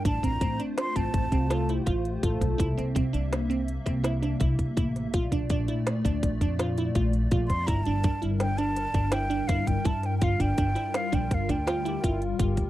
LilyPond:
<<
  \new Staff \with { instrumentName = "Flute" } { \time 7/4 \key g \dorian \tempo 4 = 165 a''8 bes''4 r8 c'''8 a''2 r2 r8 | r1. r4 | r1. r8 c'''8 | bes''8 a''4 r8 g''8 a''4. g''4 f''8 g''8 a''8 g''16. g''32 |
f''8 g''4. f''8 g''8 f''8 g''2 r4. | }
  \new Staff \with { instrumentName = "Trombone" } { \time 7/4 \key g \dorian r2. r8 g'16 f'16 a'8. g'16 f'8. g'16 a'4~ | a'4 r1. | r1. r4 | r1. r4 |
r1 r8 g'8 e'8 f'8 g'4 | }
  \new Staff \with { instrumentName = "Synth arpeggio sound" } { \time 7/4 \key g \dorian d'8 c'8 c'8 d'4 c'4 c'8 f'8 e'8 f'4 f'4 | e'8 c'8 c'8 d'4 c'4 c'8 e'8 d'8 e'4 e'4 | f'8 d'8 d'8 e'4 d'4 d'8 f'8 e'8 f'4 f'4 | e'8 d'8 d'8 e'4 d'4 d'8 e'8 d'8 e'4 e'4 |
f'8 d'8 d'8 e'4 d'4 d'8 f'8 e'8 f'4 f'4 | }
  \new Staff \with { instrumentName = "Analog synth pad" } { \time 7/4 \key g \dorian <a f' c''>1.~ <a f' c''>4 | <c bes e''>1.~ <c bes e''>4 | <bes, a d''>1.~ <bes, a d''>4 | <g d' bes'>1.~ <g d' bes'>4 |
<g f' bes'>1.~ <g f' bes'>4 | }
  \new Staff \with { instrumentName = "Upright bass" } { \clef bass \time 7/4 \key g \dorian a,,8 a,,8 a,,8 r4 a,,8 a,,8 c,4. a,,4 a,,8 b,,8 | c,8 r8 c8 c,2 c,4. c,8 c,16 r16 a,,4 | bes,,8 bes,,8 bes,,8 r4 d,8 bes,,8 f,4. bes,,4 bes,,8 f,8 | g,,8 g,,8 g,8 g,,2 g,,4. g,,8 g,,16 r16 g,4 |
g,,8 g,,8 g,,8 r4 bes,,8 g,,8 d,4. g,,4 g,,8 d,8 | }
  \new DrumStaff \with { instrumentName = "Drums" } \drummode { \time 7/4 <hh bd>8 <hh bd>8 <hh bd sn>8 hh8 <hh sn>8 <hh bd>8 <hh bd>8 <hh bd>8 <hh sn>8 <hh sn>8 <hh bd sn>8 hh8 <hh bd>8 <hh bd sn>8 | <hh bd>8 <hh sn>8 <hh bd>8 hh8 <hh sn>8 hh8 hh8 <hh bd sn>8 <hh sn>8 <hh sn>8 <hh bd>8 <hh bd>8 <hh bd>8 <hh sn>8 | <hh bd>8 <hh bd>8 <hh bd>8 hh8 <hh sn>8 <hh bd>8 <hh bd>8 <hh bd>8 <hh sn>8 hh8 <hh bd>8 hh8 <hh bd>8 <hh bd sn>8 | <hh bd>8 hh8 <hh bd>8 hh8 <hh sn>8 <hh sn>8 <hh sn>8 <hh bd>8 <hh sn>8 hh8 <hh bd sn>8 <hh bd>8 <hh bd>8 <hh sn>8 |
<hh bd>8 <hh bd>8 <hh bd>8 <hh sn>8 <hh sn>8 <hh bd>8 <hh bd sn>8 <hh bd>8 <hh sn>8 hh8 <hh bd>8 hh8 <hh bd>8 <hh bd>8 | }
>>